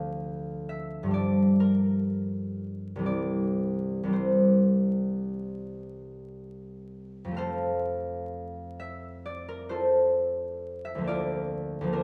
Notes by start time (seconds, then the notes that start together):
Already playing: D2 F3 A3 D4 D5 F5
0.69 E5
1.03 G2 F3
1.08 G3 D4
1.14 D5
1.60 A#4
2.96 C2 E3
3.01 G3 C4
3.06 D5
4.03 C2 E3
4.08 G3 C4
4.13 C5
7.24 F2 F3
7.31 A3 C4
7.37 A4 C5 F5
8.79 E5
9.26 D5
9.48 A#4
9.69 F4 A4 C5
10.85 E5
10.95 D2 F3
11.01 A#3 D4
11.07 F4 A#4 D5
11.81 D2 F3
11.87 A#3
11.93 D4 F4 A#4